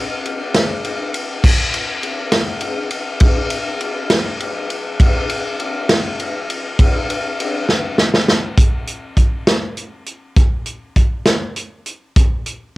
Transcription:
0.26 ride
0.54 snare, ride
0.85 ride
1.14 ride
1.44 kick, crash
1.74 ride
2.03 ride
2.32 snare, ride
2.61 ride
2.91 ride
3.20 kick, ride
3.50 ride
3.80 ride
4.10 snare, ride
4.40 ride
4.70 ride
5.00 kick, ride
5.30 ride
5.60 ride
5.89 snare, ride
6.19 ride
6.50 ride
6.79 kick, ride
7.10 ride
7.40 ride
7.69 snare
7.98 snare
8.14 snare
8.28 snare
8.58 kick, closed hi-hat
8.88 closed hi-hat
9.17 kick, closed hi-hat
9.47 snare, closed hi-hat
9.77 closed hi-hat
10.06 closed hi-hat
10.36 kick, closed hi-hat
10.66 closed hi-hat
10.96 kick, closed hi-hat
11.26 snare, closed hi-hat
11.56 closed hi-hat
11.86 closed hi-hat
12.16 kick, closed hi-hat
12.46 closed hi-hat

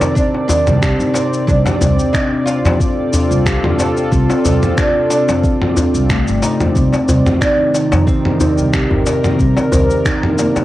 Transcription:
Already playing: C3 D#3 C4 D#4 A#4 C5 D5
0.01 F2, darbuka tek, shaker
0.15 C4 D4, kick, shaker
0.35 darbuka ka
0.48 D#3 D4, darbuka dum, shaker
0.67 C2, mid tom, shaker
0.82 G4, finger snap, kick, shaker
1.00 G1 D#4, shaker
1.14 C4, darbuka tek, shaker
1.33 shaker
1.47 C2 C4 D4, kick, shaker
1.66 mid tom, darbuka ka, darbuka tek, shaker
1.81 C2 C5, darbuka dum, shaker
1.99 shaker
2.13 D4 D#4, finger snap, kick, shaker
2.27 F4
2.32 D4
2.46 F4, darbuka ka, shaker
2.65 F2, mid tom, darbuka tek, shaker
2.72 A4
2.80 C4, kick, shaker
3.13 D4, darbuka dum, shaker
3.31 C2, shaker
3.46 G4, finger snap, kick, shaker
3.63 G1 D4, mid tom, darbuka ka, darbuka dum
3.78 C4, darbuka tek, shaker
3.97 darbuka ka, shaker
4.12 C2 C4, kick, shaker
4.30 darbuka ka, darbuka tek, shaker
4.45 C2 C5, darbuka dum, shaker
4.63 mid tom, shaker
4.77 D4, finger snap, kick, shaker
4.95 D4
5.10 D4, darbuka ka, shaker
5.29 F2, darbuka tek, shaker
5.44 C4, kick, shaker
5.61 mid tom, darbuka ka
5.76 D4, darbuka dum, shaker
5.95 C2, shaker
6.10 A3, finger snap, kick, shaker
6.27 G1 A3, shaker
6.42 D#4, darbuka tek, shaker
6.60 mid tom, darbuka dum, shaker
6.75 C2 C3 C4, kick, shaker
6.93 D#3, darbuka ka, darbuka tek, shaker
7.08 C2 C5, darbuka dum, shaker
7.26 mid tom, shaker
7.41 D4 D#4, finger snap, kick, shaker
7.59 D#4
7.74 darbuka ka, shaker
7.87 A#4
7.92 F2, darbuka tek, shaker
8.07 C4, kick, shaker
8.25 mid tom
8.40 C4 D#4, darbuka dum, shaker
8.58 C2, shaker
8.73 G4, finger snap, kick, shaker
8.90 G1 D#4, darbuka ka, darbuka dum
9.06 darbuka tek, shaker
9.24 mid tom, darbuka ka, shaker
9.39 C2 C4, kick, shaker
9.57 darbuka ka, darbuka tek, shaker
9.72 C2 C5, darbuka dum, shaker
9.90 shaker
10.05 D#4, finger snap, kick, shaker
10.23 D#4, mid tom
10.38 A#3, darbuka ka, shaker
10.56 F2, darbuka tek, shaker

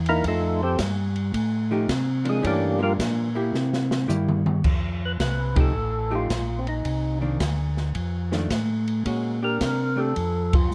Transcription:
Already playing: E2
0.06 A#3 D#4 E4 A#4, ride
0.23 F2, kick, ride
0.28 A3 D#4 F4 A4
0.63 C4 G4 A4 C5
0.79 G2, kick, snare, hi-hat pedal, ride
1.16 ride
1.34 A2, kick, ride
1.71 F3 A3 D#4 G4
1.89 C3, kick, snare, hi-hat pedal, ride
2.24 F3 A#3 D4, ride
2.29 G#3 G#4
2.42 G2 E3 A3 C#4, kick, ride
2.46 G3 A#3 D4 G4
2.78 F3 A#3 D4
2.83 A#3 F4 G4 A#4
2.99 A#2, kick, snare, hi-hat pedal, ride
3.35 A#3 E4 G4
3.54 C3, snare
3.73 snare
3.91 snare
4.08 G2 A#3 E4 G4, hi-hat pedal, mid tom
4.29 mid tom
4.46 mid tom
4.64 F2, kick, crash
5.05 B4
5.20 C2 B4, kick, snare, hi-hat pedal, ride
5.55 F3 A3 D#4 G4, kick, ride
5.61 A4
5.75 A1
6.10 F3 A3 D#4 G4
6.15 F4
6.29 A#1, kick, snare, hi-hat pedal, ride
6.59 C4
6.67 D#4, ride
6.85 C2, kick, ride
7.21 D#3 A#3 D4
7.40 D2, kick, snare, hi-hat pedal, ride
7.77 snare
7.95 F2, kick, ride
8.32 D#3 A3 D4, snare
8.50 A2, kick, snare, hi-hat pedal, ride
8.88 ride
9.05 A#2 G#3 C#4 F#4, kick, ride
9.42 D4 G4 A#4
9.61 C3, kick, snare, hi-hat pedal, ride
9.96 A3 D4 G4 A4
10.16 F2, kick, ride
10.53 F4, kick, ride
10.71 G2

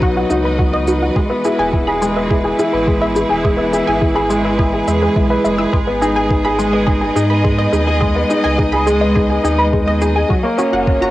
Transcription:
Already playing: B1 F#3 B3 F#4 B4 D#5
0.00 D#4 F#4, kick
0.15 F#4 F#5
0.29 C#2 D#4 F#4, shaker
0.44 B3 B5
0.58 F#3 F#4, kick
0.73 B3 D#5
0.87 D#4 F#4, shaker
1.02 F#4 F#5
1.15 E3 G#3 G#4, kick
1.29 B3 E5
1.44 E4 G#4, shaker
1.56 E1 E4 G#4 G#5
1.73 E4 G#4, kick
1.87 G#4 B5
2.01 G#3 G#4, shaker
2.16 B3 G#4 E5
2.30 E4 G#4, kick
2.44 G#4 G#5
2.58 E4 G#4, shaker
2.72 G#1 B3 B5
2.87 G#3 G#4, kick
3.00 B3 E5
3.15 E4 G#4, shaker
3.29 E1 G#4 G#5
3.43 G#3 G#4, kick
3.57 B3 E5
3.72 E4 G#4, shaker
3.87 G#1 G#4 G#5
4.01 E4 G#4, kick
4.15 G#4 B5
4.30 G#3 G#4, shaker
4.44 B3 E5
4.58 E4 G#4, kick, swell
4.73 G#4 G#5
4.87 E2 G#3 E5, shaker
5.02 G#3 B4
5.16 B1 E4 E5, kick
5.30 B4 E5
5.44 F#1 G#3 E5, shaker
5.58 E4 E6
5.73 G#1 G#3 G#4, kick
5.87 B3 D#5
6.01 D#4 G#4, shaker
6.16 G#4 G#5
6.30 D#4 G#4, kick
6.41 D#5
6.45 G#4 B5
6.59 G#3 G#4, shaker
6.73 B3 D#5
6.87 D#4 G#4, kick
7.01 G#4 G#5
7.16 G#2 D#4 G#4, shaker
7.30 B3 B5
7.44 G#3 G#4, kick
7.58 B3 D#5
7.72 D#2 D#4 G#4, shaker
7.87 G#4 G#5
8.01 G#3 G#4, kick
8.15 B3 D#5
8.30 D#4 G#4, shaker
8.44 C#2 G#4 G#5
8.58 D#4 G#4, kick
8.72 G#4 B5
8.87 G#3 G#4, shaker
9.01 B3 D#5
9.16 D#4 G#4, kick
9.30 G#4 G#5
9.44 D#2 D#4 G#4, shaker
9.58 B3 B5
9.73 G#3 G#4, kick
9.87 B3 D#5
10.01 D#4 G#4, shaker
10.15 G#4 G#5
10.29 F#3 F#4, kick
10.43 A#3 C#5
10.52 F#4
10.58 C#4 F#4, shaker
10.63 C#5
10.72 F#1 F#4 F#5
10.86 C#4 F#4, kick
11.01 F#4 A#5

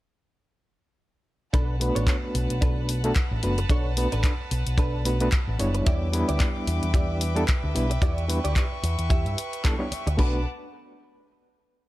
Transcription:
1.53 B1 D4 A4 B4 F#5 A5, kick, closed hi-hat
1.80 A3 B3 D4 F#4 B4, open hi-hat
1.95 A1 D4 A4 C#5, closed hi-hat
2.07 kick, clap, closed hi-hat
2.34 B1, muted clean electric guitar stroke, open hi-hat
2.50 B1, closed hi-hat
2.61 D4 A4 B4, kick, closed hi-hat
2.89 open hi-hat
3.04 A3 B3 D4 F#4 A4, closed hi-hat
3.16 muted clean electric guitar stroke, kick, clap, closed hi-hat
3.31 A1
3.43 F#1 A3 B3 D4 F#4 B4, muted clean electric guitar stroke, open hi-hat
3.58 muted clean electric guitar stroke, closed hi-hat
3.69 B1 D4 A4 C#5, kick, closed hi-hat
3.97 A3 B3 D4 F#4 B4, open hi-hat
4.12 A1 D4 A4 B4, closed hi-hat
4.24 kick, clap, closed hi-hat
4.51 B1, muted clean electric guitar stroke, open hi-hat
4.66 B1, closed hi-hat
4.78 D4 A4 B4, kick, closed hi-hat
5.05 A3 B3 D4 F#4 B4, open hi-hat
5.20 A3 B3 D4 F#4 B4, closed hi-hat
5.32 muted clean electric guitar stroke, kick, clap, closed hi-hat
5.47 A1
5.59 F#1 G3 B3 D4 E4 C#5, muted clean electric guitar stroke, open hi-hat
5.74 muted clean electric guitar stroke, closed hi-hat
5.86 E2 E4 G4 B4 D5 E5 G5 D6, kick, closed hi-hat
6.13 G3 B3 D4 E4 B4, open hi-hat
6.28 D2 E4 G4 D5, closed hi-hat
6.40 kick, clap, closed hi-hat
6.67 E2, muted clean electric guitar stroke, open hi-hat
6.83 E2, closed hi-hat
6.94 E4 G4 D5, kick, closed hi-hat
7.21 open hi-hat
7.35 G3 B3 D4 E4 A4, closed hi-hat
7.48 muted clean electric guitar stroke, kick, clap, closed hi-hat
7.64 D2
7.74 B1 G3 B3 D4 E4 B4, muted clean electric guitar stroke, open hi-hat
7.90 muted clean electric guitar stroke, closed hi-hat
8.02 E2 E4 G4 D5 C#6, kick, closed hi-hat
8.18 closed hi-hat
8.28 G3 B3 D4 E4 B4, open hi-hat
8.44 D2 E4 G4 D5, closed hi-hat
8.56 kick, clap, closed hi-hat
8.83 E2, muted clean electric guitar stroke, open hi-hat
8.99 E2, closed hi-hat
9.10 E4 G4 E5, kick, closed hi-hat
9.25 G2, closed hi-hat
9.38 open hi-hat
9.53 closed hi-hat
9.64 G3 B3 D4 E4 A4, muted clean electric guitar stroke, kick, clap, closed hi-hat
9.79 G3 B3 D4 E4 C#5
9.91 muted clean electric guitar stroke, muted picked electric bass stroke, open hi-hat
10.07 D2, muted clean electric guitar stroke, closed hi-hat
10.17 B1 A3 B3 D4 F#4 A4 B4 F#5 A5 D6, kick, splash

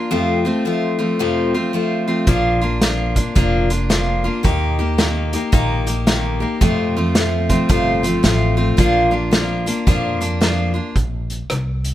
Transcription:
Already playing: A#3 D4 F4
0.11 F2 C3 F3 A3 C4 F4
0.45 F3 A3 C4 F4
0.65 F3 A3 C4 F4
0.99 F3 A3 C4 F4
1.19 F2 C3 F3 A3 C4 F4
1.54 F3 A3 C4 F4
1.73 F3 A3 C4 F4
2.08 F3 A3 C4 F4
2.27 A#1 A#2 F3 A#3 D4 F4, kick, closed hi-hat
2.61 A#3 D4 F4
2.82 F3 A#3 D4 F4, snare, closed hi-hat
3.16 A#3 D4 F4, kick, closed hi-hat
3.35 F1 A#2 F3 A#3 D4 F4, kick, closed hi-hat
3.70 A#3 D4 F4, closed hi-hat
3.90 F3 A#3 D4 F4, snare, closed hi-hat
4.24 A#3 D4 F4
4.43 D#2 D#3 A#3 D#4 G4, kick, closed hi-hat
4.79 A#3 D#4 G4
4.98 D#3 A#3 D#4 G4, snare, closed hi-hat
5.33 A#3 D#4 G4, closed hi-hat
5.52 A#1 D#3 A#3 D#4 G4, kick, closed hi-hat
5.86 A#3 D#4 G4, closed hi-hat
6.07 D#3 A#3 D#4 G4, snare, closed hi-hat
6.40 A#3 D#4 G4
6.61 F2 C3 F3 A3 C4 F4, kick, closed hi-hat
6.97 F3 A3 C4 F4
7.15 F3 A3 C4 F4, snare, closed hi-hat
7.49 F3 A3 C4 F4, kick, closed hi-hat
7.69 G1 F2 C3 F3 A3 C4 F4, kick, closed hi-hat
8.03 F3 A3 C4 F4, closed hi-hat
8.23 A1 F3 A3 C4 F4, snare, closed hi-hat
8.57 F3 A3 C4 F4
8.77 A#1 A#2 F3 A#3 D4 F4, kick, closed hi-hat
9.11 A#3 D4 F4
9.31 F3 A#3 D4 F4, snare, closed hi-hat
9.66 A#3 D4 F4, closed hi-hat
9.87 F2 A#2 F3 A#3 D4 F4, kick, closed hi-hat
10.21 A#3 D4 F4, closed hi-hat
10.41 F3 A#3 D4 F4, snare, closed hi-hat
10.74 A#3 D4 F4
10.96 A#1, kick, closed hi-hat
11.30 closed hi-hat
11.50 C2, cross-stick, closed hi-hat
11.85 closed hi-hat

